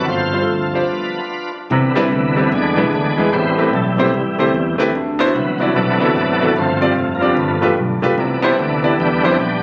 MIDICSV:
0, 0, Header, 1, 4, 480
1, 0, Start_track
1, 0, Key_signature, 0, "major"
1, 0, Tempo, 404858
1, 101, Time_signature, 4, 2, 24, 8
1, 11416, End_track
2, 0, Start_track
2, 0, Title_t, "Grand piano"
2, 0, Program_c, 0, 0
2, 108, Note_on_c, 0, 43, 58
2, 384, Note_on_c, 0, 55, 63
2, 391, Note_on_c, 0, 62, 59
2, 400, Note_on_c, 0, 65, 52
2, 406, Note_on_c, 0, 72, 70
2, 452, Note_off_c, 0, 55, 0
2, 456, Note_off_c, 0, 62, 0
2, 460, Note_off_c, 0, 65, 0
2, 463, Note_off_c, 0, 72, 0
2, 481, Note_on_c, 0, 55, 58
2, 486, Note_on_c, 0, 62, 54
2, 488, Note_on_c, 0, 65, 55
2, 500, Note_on_c, 0, 69, 65
2, 626, Note_off_c, 0, 55, 0
2, 628, Note_off_c, 0, 62, 0
2, 630, Note_off_c, 0, 65, 0
2, 636, Note_off_c, 0, 69, 0
2, 836, Note_off_c, 0, 43, 0
2, 870, Note_on_c, 0, 55, 64
2, 876, Note_on_c, 0, 62, 58
2, 888, Note_on_c, 0, 65, 60
2, 891, Note_on_c, 0, 72, 75
2, 997, Note_off_c, 0, 55, 0
2, 1001, Note_off_c, 0, 62, 0
2, 1006, Note_off_c, 0, 65, 0
2, 1008, Note_off_c, 0, 72, 0
2, 2037, Note_on_c, 0, 48, 86
2, 2315, Note_on_c, 0, 55, 90
2, 2320, Note_on_c, 0, 60, 84
2, 2321, Note_on_c, 0, 62, 90
2, 2326, Note_on_c, 0, 64, 86
2, 2333, Note_on_c, 0, 71, 99
2, 2441, Note_off_c, 0, 55, 0
2, 2444, Note_off_c, 0, 60, 0
2, 2444, Note_off_c, 0, 62, 0
2, 2447, Note_off_c, 0, 64, 0
2, 2450, Note_off_c, 0, 71, 0
2, 2761, Note_off_c, 0, 48, 0
2, 2799, Note_on_c, 0, 55, 77
2, 2803, Note_on_c, 0, 60, 71
2, 2806, Note_on_c, 0, 62, 74
2, 2813, Note_on_c, 0, 64, 73
2, 2817, Note_on_c, 0, 71, 85
2, 2923, Note_off_c, 0, 55, 0
2, 2925, Note_off_c, 0, 60, 0
2, 2927, Note_off_c, 0, 62, 0
2, 2930, Note_off_c, 0, 64, 0
2, 2932, Note_off_c, 0, 71, 0
2, 2990, Note_on_c, 0, 52, 65
2, 3279, Note_on_c, 0, 56, 82
2, 3287, Note_on_c, 0, 59, 76
2, 3289, Note_on_c, 0, 62, 79
2, 3293, Note_on_c, 0, 64, 75
2, 3298, Note_on_c, 0, 71, 87
2, 3404, Note_off_c, 0, 56, 0
2, 3407, Note_off_c, 0, 59, 0
2, 3408, Note_off_c, 0, 62, 0
2, 3410, Note_off_c, 0, 64, 0
2, 3413, Note_off_c, 0, 71, 0
2, 3717, Note_off_c, 0, 52, 0
2, 3766, Note_on_c, 0, 56, 82
2, 3771, Note_on_c, 0, 59, 66
2, 3773, Note_on_c, 0, 62, 68
2, 3780, Note_on_c, 0, 64, 69
2, 3786, Note_on_c, 0, 71, 83
2, 3887, Note_off_c, 0, 56, 0
2, 3889, Note_off_c, 0, 59, 0
2, 3890, Note_off_c, 0, 62, 0
2, 3894, Note_off_c, 0, 64, 0
2, 3896, Note_off_c, 0, 71, 0
2, 3960, Note_on_c, 0, 45, 70
2, 4242, Note_on_c, 0, 57, 78
2, 4246, Note_on_c, 0, 60, 74
2, 4251, Note_on_c, 0, 64, 69
2, 4255, Note_on_c, 0, 67, 74
2, 4258, Note_on_c, 0, 71, 84
2, 4364, Note_off_c, 0, 57, 0
2, 4366, Note_off_c, 0, 60, 0
2, 4369, Note_off_c, 0, 64, 0
2, 4371, Note_off_c, 0, 67, 0
2, 4372, Note_off_c, 0, 71, 0
2, 4681, Note_off_c, 0, 45, 0
2, 4720, Note_on_c, 0, 57, 74
2, 4723, Note_on_c, 0, 60, 68
2, 4732, Note_on_c, 0, 64, 80
2, 4732, Note_on_c, 0, 67, 75
2, 4738, Note_on_c, 0, 72, 88
2, 4843, Note_off_c, 0, 57, 0
2, 4844, Note_off_c, 0, 60, 0
2, 4849, Note_off_c, 0, 64, 0
2, 4849, Note_off_c, 0, 67, 0
2, 4852, Note_off_c, 0, 72, 0
2, 5199, Note_on_c, 0, 57, 83
2, 5206, Note_on_c, 0, 60, 76
2, 5208, Note_on_c, 0, 64, 76
2, 5211, Note_on_c, 0, 67, 75
2, 5217, Note_on_c, 0, 72, 89
2, 5322, Note_off_c, 0, 57, 0
2, 5325, Note_off_c, 0, 60, 0
2, 5326, Note_off_c, 0, 64, 0
2, 5328, Note_off_c, 0, 67, 0
2, 5331, Note_off_c, 0, 72, 0
2, 5669, Note_on_c, 0, 57, 93
2, 5673, Note_on_c, 0, 60, 82
2, 5684, Note_on_c, 0, 64, 86
2, 5685, Note_on_c, 0, 67, 88
2, 5688, Note_on_c, 0, 71, 104
2, 5797, Note_off_c, 0, 57, 0
2, 5798, Note_off_c, 0, 60, 0
2, 5804, Note_off_c, 0, 64, 0
2, 5804, Note_off_c, 0, 67, 0
2, 5806, Note_off_c, 0, 71, 0
2, 5870, Note_on_c, 0, 50, 84
2, 6154, Note_on_c, 0, 59, 100
2, 6162, Note_on_c, 0, 62, 85
2, 6164, Note_on_c, 0, 64, 91
2, 6169, Note_on_c, 0, 66, 87
2, 6171, Note_on_c, 0, 72, 103
2, 6278, Note_off_c, 0, 59, 0
2, 6282, Note_off_c, 0, 62, 0
2, 6283, Note_off_c, 0, 64, 0
2, 6286, Note_off_c, 0, 66, 0
2, 6287, Note_off_c, 0, 72, 0
2, 6594, Note_off_c, 0, 50, 0
2, 6637, Note_on_c, 0, 59, 81
2, 6641, Note_on_c, 0, 62, 69
2, 6648, Note_on_c, 0, 64, 76
2, 6651, Note_on_c, 0, 66, 77
2, 6658, Note_on_c, 0, 74, 88
2, 6760, Note_off_c, 0, 59, 0
2, 6762, Note_off_c, 0, 62, 0
2, 6765, Note_off_c, 0, 64, 0
2, 6767, Note_off_c, 0, 66, 0
2, 6770, Note_off_c, 0, 74, 0
2, 7114, Note_on_c, 0, 59, 84
2, 7116, Note_on_c, 0, 62, 73
2, 7122, Note_on_c, 0, 64, 74
2, 7124, Note_on_c, 0, 66, 77
2, 7130, Note_on_c, 0, 69, 90
2, 7238, Note_off_c, 0, 59, 0
2, 7239, Note_off_c, 0, 62, 0
2, 7242, Note_off_c, 0, 64, 0
2, 7243, Note_off_c, 0, 66, 0
2, 7246, Note_off_c, 0, 69, 0
2, 7592, Note_on_c, 0, 59, 79
2, 7592, Note_on_c, 0, 62, 72
2, 7598, Note_on_c, 0, 64, 68
2, 7601, Note_on_c, 0, 66, 73
2, 7608, Note_on_c, 0, 69, 87
2, 7716, Note_off_c, 0, 59, 0
2, 7716, Note_off_c, 0, 62, 0
2, 7720, Note_off_c, 0, 64, 0
2, 7721, Note_off_c, 0, 66, 0
2, 7725, Note_off_c, 0, 69, 0
2, 7779, Note_on_c, 0, 43, 69
2, 8070, Note_on_c, 0, 60, 75
2, 8073, Note_on_c, 0, 62, 67
2, 8077, Note_on_c, 0, 65, 75
2, 8083, Note_on_c, 0, 67, 67
2, 8084, Note_on_c, 0, 74, 89
2, 8195, Note_off_c, 0, 60, 0
2, 8197, Note_off_c, 0, 62, 0
2, 8199, Note_off_c, 0, 65, 0
2, 8202, Note_off_c, 0, 67, 0
2, 8202, Note_off_c, 0, 74, 0
2, 8507, Note_off_c, 0, 43, 0
2, 8546, Note_on_c, 0, 60, 78
2, 8549, Note_on_c, 0, 62, 77
2, 8555, Note_on_c, 0, 65, 70
2, 8559, Note_on_c, 0, 67, 76
2, 8565, Note_on_c, 0, 74, 84
2, 8673, Note_off_c, 0, 60, 0
2, 8674, Note_off_c, 0, 62, 0
2, 8677, Note_off_c, 0, 65, 0
2, 8680, Note_off_c, 0, 67, 0
2, 8682, Note_off_c, 0, 74, 0
2, 8740, Note_on_c, 0, 43, 64
2, 9026, Note_on_c, 0, 57, 77
2, 9031, Note_on_c, 0, 62, 73
2, 9035, Note_on_c, 0, 65, 78
2, 9039, Note_on_c, 0, 67, 75
2, 9043, Note_on_c, 0, 71, 93
2, 9152, Note_off_c, 0, 57, 0
2, 9155, Note_off_c, 0, 62, 0
2, 9157, Note_off_c, 0, 65, 0
2, 9159, Note_off_c, 0, 67, 0
2, 9161, Note_off_c, 0, 71, 0
2, 9467, Note_off_c, 0, 43, 0
2, 9510, Note_on_c, 0, 57, 83
2, 9515, Note_on_c, 0, 62, 80
2, 9519, Note_on_c, 0, 65, 83
2, 9521, Note_on_c, 0, 67, 86
2, 9527, Note_on_c, 0, 71, 99
2, 9634, Note_off_c, 0, 57, 0
2, 9637, Note_off_c, 0, 62, 0
2, 9639, Note_off_c, 0, 65, 0
2, 9640, Note_off_c, 0, 67, 0
2, 9643, Note_off_c, 0, 71, 0
2, 9704, Note_on_c, 0, 48, 78
2, 9988, Note_on_c, 0, 59, 95
2, 9990, Note_on_c, 0, 62, 82
2, 9996, Note_on_c, 0, 64, 82
2, 10001, Note_on_c, 0, 67, 79
2, 10009, Note_on_c, 0, 72, 94
2, 10113, Note_off_c, 0, 59, 0
2, 10114, Note_off_c, 0, 62, 0
2, 10117, Note_off_c, 0, 64, 0
2, 10119, Note_off_c, 0, 67, 0
2, 10123, Note_off_c, 0, 72, 0
2, 10429, Note_off_c, 0, 48, 0
2, 10465, Note_on_c, 0, 59, 75
2, 10473, Note_on_c, 0, 62, 73
2, 10475, Note_on_c, 0, 64, 73
2, 10479, Note_on_c, 0, 67, 74
2, 10481, Note_on_c, 0, 74, 88
2, 10591, Note_off_c, 0, 59, 0
2, 10595, Note_off_c, 0, 62, 0
2, 10596, Note_off_c, 0, 64, 0
2, 10598, Note_off_c, 0, 67, 0
2, 10599, Note_off_c, 0, 74, 0
2, 10950, Note_on_c, 0, 59, 80
2, 10953, Note_on_c, 0, 62, 72
2, 10958, Note_on_c, 0, 64, 80
2, 10963, Note_on_c, 0, 67, 70
2, 10965, Note_on_c, 0, 72, 94
2, 11073, Note_off_c, 0, 59, 0
2, 11075, Note_off_c, 0, 62, 0
2, 11077, Note_off_c, 0, 64, 0
2, 11079, Note_off_c, 0, 67, 0
2, 11081, Note_off_c, 0, 72, 0
2, 11416, End_track
3, 0, Start_track
3, 0, Title_t, "Tonewheel organ"
3, 0, Program_c, 1, 16
3, 95, Note_on_c, 1, 53, 49
3, 99, Note_on_c, 1, 57, 41
3, 106, Note_on_c, 1, 60, 49
3, 107, Note_on_c, 1, 72, 78
3, 109, Note_on_c, 1, 65, 62
3, 591, Note_on_c, 1, 69, 72
3, 601, Note_off_c, 1, 72, 0
3, 874, Note_off_c, 1, 65, 0
3, 888, Note_on_c, 1, 65, 53
3, 889, Note_on_c, 1, 62, 49
3, 893, Note_off_c, 1, 69, 0
3, 893, Note_on_c, 1, 71, 70
3, 1015, Note_off_c, 1, 53, 0
3, 1017, Note_off_c, 1, 57, 0
3, 1020, Note_off_c, 1, 60, 0
3, 1077, Note_on_c, 1, 53, 43
3, 1090, Note_on_c, 1, 57, 43
3, 1090, Note_on_c, 1, 59, 46
3, 1423, Note_off_c, 1, 53, 0
3, 1431, Note_off_c, 1, 57, 0
3, 1431, Note_off_c, 1, 59, 0
3, 1800, Note_off_c, 1, 62, 0
3, 1800, Note_off_c, 1, 65, 0
3, 1802, Note_off_c, 1, 71, 0
3, 2017, Note_on_c, 1, 50, 59
3, 2021, Note_on_c, 1, 52, 52
3, 2035, Note_on_c, 1, 59, 63
3, 2373, Note_off_c, 1, 50, 0
3, 2376, Note_off_c, 1, 52, 0
3, 2383, Note_off_c, 1, 59, 0
3, 2512, Note_on_c, 1, 50, 67
3, 2517, Note_on_c, 1, 52, 67
3, 2527, Note_on_c, 1, 59, 104
3, 2957, Note_off_c, 1, 50, 0
3, 2959, Note_off_c, 1, 52, 0
3, 2990, Note_off_c, 1, 59, 0
3, 2991, Note_on_c, 1, 50, 52
3, 2996, Note_on_c, 1, 56, 70
3, 3005, Note_on_c, 1, 59, 76
3, 3022, Note_on_c, 1, 62, 111
3, 3453, Note_off_c, 1, 62, 0
3, 3474, Note_off_c, 1, 56, 0
3, 3479, Note_off_c, 1, 59, 0
3, 3488, Note_on_c, 1, 56, 80
3, 3493, Note_on_c, 1, 59, 78
3, 3496, Note_on_c, 1, 62, 104
3, 3726, Note_off_c, 1, 50, 0
3, 3925, Note_off_c, 1, 56, 0
3, 3927, Note_off_c, 1, 59, 0
3, 3944, Note_on_c, 1, 60, 104
3, 3946, Note_on_c, 1, 55, 76
3, 3948, Note_on_c, 1, 59, 64
3, 3958, Note_on_c, 1, 52, 76
3, 3976, Note_off_c, 1, 62, 0
3, 4228, Note_off_c, 1, 60, 0
3, 4237, Note_off_c, 1, 59, 0
3, 4251, Note_on_c, 1, 59, 86
3, 4428, Note_on_c, 1, 57, 89
3, 4437, Note_off_c, 1, 59, 0
3, 4561, Note_off_c, 1, 57, 0
3, 4709, Note_off_c, 1, 55, 0
3, 4722, Note_off_c, 1, 52, 0
3, 4722, Note_on_c, 1, 48, 55
3, 4724, Note_on_c, 1, 55, 66
3, 4730, Note_on_c, 1, 59, 96
3, 4737, Note_on_c, 1, 52, 60
3, 4888, Note_off_c, 1, 48, 0
3, 4894, Note_off_c, 1, 59, 0
3, 5640, Note_off_c, 1, 52, 0
3, 5640, Note_off_c, 1, 55, 0
3, 6331, Note_on_c, 1, 54, 75
3, 6341, Note_on_c, 1, 52, 71
3, 6354, Note_on_c, 1, 59, 96
3, 6612, Note_off_c, 1, 52, 0
3, 6620, Note_on_c, 1, 48, 60
3, 6621, Note_off_c, 1, 54, 0
3, 6627, Note_on_c, 1, 52, 56
3, 6629, Note_off_c, 1, 59, 0
3, 6635, Note_on_c, 1, 54, 49
3, 6643, Note_on_c, 1, 59, 66
3, 6813, Note_off_c, 1, 54, 0
3, 6820, Note_on_c, 1, 57, 82
3, 6828, Note_on_c, 1, 54, 81
3, 6834, Note_on_c, 1, 62, 108
3, 7301, Note_off_c, 1, 54, 0
3, 7301, Note_off_c, 1, 57, 0
3, 7311, Note_off_c, 1, 62, 0
3, 7315, Note_on_c, 1, 54, 72
3, 7315, Note_on_c, 1, 57, 71
3, 7325, Note_on_c, 1, 62, 113
3, 7725, Note_off_c, 1, 48, 0
3, 7728, Note_off_c, 1, 52, 0
3, 7737, Note_off_c, 1, 59, 0
3, 7755, Note_off_c, 1, 54, 0
3, 7755, Note_off_c, 1, 57, 0
3, 7760, Note_off_c, 1, 62, 0
3, 7788, Note_on_c, 1, 53, 75
3, 7794, Note_on_c, 1, 57, 52
3, 7805, Note_on_c, 1, 60, 104
3, 8139, Note_off_c, 1, 57, 0
3, 8242, Note_off_c, 1, 60, 0
3, 8285, Note_on_c, 1, 57, 87
3, 8453, Note_off_c, 1, 57, 0
3, 8477, Note_on_c, 1, 58, 68
3, 8568, Note_off_c, 1, 58, 0
3, 8584, Note_off_c, 1, 53, 0
3, 8588, Note_on_c, 1, 50, 61
3, 8592, Note_on_c, 1, 59, 104
3, 8598, Note_on_c, 1, 53, 66
3, 8753, Note_off_c, 1, 53, 0
3, 8767, Note_on_c, 1, 53, 54
3, 8768, Note_off_c, 1, 59, 0
3, 8782, Note_on_c, 1, 57, 51
3, 8782, Note_on_c, 1, 59, 58
3, 9105, Note_off_c, 1, 53, 0
3, 9112, Note_off_c, 1, 57, 0
3, 9113, Note_off_c, 1, 59, 0
3, 9483, Note_off_c, 1, 50, 0
3, 9709, Note_on_c, 1, 52, 62
3, 9719, Note_on_c, 1, 59, 54
3, 9722, Note_on_c, 1, 62, 62
3, 10166, Note_off_c, 1, 59, 0
3, 10168, Note_off_c, 1, 52, 0
3, 10180, Note_on_c, 1, 59, 95
3, 10183, Note_on_c, 1, 52, 74
3, 10188, Note_on_c, 1, 50, 73
3, 10447, Note_off_c, 1, 62, 0
3, 10625, Note_off_c, 1, 59, 0
3, 10670, Note_on_c, 1, 62, 108
3, 10673, Note_on_c, 1, 55, 73
3, 10678, Note_on_c, 1, 59, 80
3, 10959, Note_off_c, 1, 62, 0
3, 10973, Note_on_c, 1, 62, 104
3, 11092, Note_off_c, 1, 52, 0
3, 11094, Note_off_c, 1, 50, 0
3, 11135, Note_off_c, 1, 62, 0
3, 11144, Note_off_c, 1, 55, 0
3, 11144, Note_off_c, 1, 59, 0
3, 11158, Note_on_c, 1, 55, 70
3, 11158, Note_on_c, 1, 59, 79
3, 11166, Note_on_c, 1, 62, 110
3, 11416, Note_off_c, 1, 55, 0
3, 11416, Note_off_c, 1, 59, 0
3, 11416, Note_off_c, 1, 62, 0
3, 11416, End_track
4, 0, Start_track
4, 0, Title_t, "Fingered electric bass"
4, 0, Program_c, 2, 33
4, 91, Note_on_c, 2, 31, 89
4, 505, Note_off_c, 2, 31, 0
4, 584, Note_on_c, 2, 38, 73
4, 994, Note_off_c, 2, 38, 0
4, 2024, Note_on_c, 2, 36, 108
4, 2434, Note_off_c, 2, 36, 0
4, 2512, Note_on_c, 2, 38, 91
4, 2919, Note_off_c, 2, 38, 0
4, 2985, Note_on_c, 2, 40, 115
4, 3283, Note_on_c, 2, 36, 87
4, 3301, Note_off_c, 2, 40, 0
4, 3440, Note_off_c, 2, 36, 0
4, 3469, Note_on_c, 2, 38, 102
4, 3719, Note_off_c, 2, 38, 0
4, 3764, Note_on_c, 2, 40, 88
4, 3921, Note_off_c, 2, 40, 0
4, 3948, Note_on_c, 2, 33, 104
4, 4355, Note_off_c, 2, 33, 0
4, 4425, Note_on_c, 2, 35, 88
4, 4833, Note_off_c, 2, 35, 0
4, 4906, Note_on_c, 2, 36, 100
4, 5157, Note_off_c, 2, 36, 0
4, 5197, Note_on_c, 2, 38, 91
4, 5356, Note_off_c, 2, 38, 0
4, 5383, Note_on_c, 2, 40, 105
4, 5635, Note_off_c, 2, 40, 0
4, 5684, Note_on_c, 2, 38, 94
4, 5839, Note_off_c, 2, 38, 0
4, 5871, Note_on_c, 2, 38, 109
4, 6276, Note_off_c, 2, 38, 0
4, 6351, Note_on_c, 2, 36, 105
4, 6755, Note_off_c, 2, 36, 0
4, 6823, Note_on_c, 2, 35, 98
4, 7074, Note_off_c, 2, 35, 0
4, 7117, Note_on_c, 2, 38, 94
4, 7274, Note_off_c, 2, 38, 0
4, 7299, Note_on_c, 2, 32, 93
4, 7708, Note_off_c, 2, 32, 0
4, 7774, Note_on_c, 2, 31, 105
4, 8185, Note_off_c, 2, 31, 0
4, 8249, Note_on_c, 2, 29, 102
4, 8662, Note_off_c, 2, 29, 0
4, 8733, Note_on_c, 2, 31, 110
4, 8987, Note_off_c, 2, 31, 0
4, 9024, Note_on_c, 2, 33, 89
4, 9186, Note_off_c, 2, 33, 0
4, 9215, Note_on_c, 2, 35, 88
4, 9468, Note_off_c, 2, 35, 0
4, 9509, Note_on_c, 2, 36, 81
4, 9668, Note_off_c, 2, 36, 0
4, 9694, Note_on_c, 2, 36, 113
4, 10104, Note_off_c, 2, 36, 0
4, 10182, Note_on_c, 2, 38, 92
4, 10588, Note_off_c, 2, 38, 0
4, 10659, Note_on_c, 2, 40, 99
4, 10909, Note_off_c, 2, 40, 0
4, 10954, Note_on_c, 2, 41, 89
4, 11111, Note_off_c, 2, 41, 0
4, 11138, Note_on_c, 2, 34, 101
4, 11416, Note_off_c, 2, 34, 0
4, 11416, End_track
0, 0, End_of_file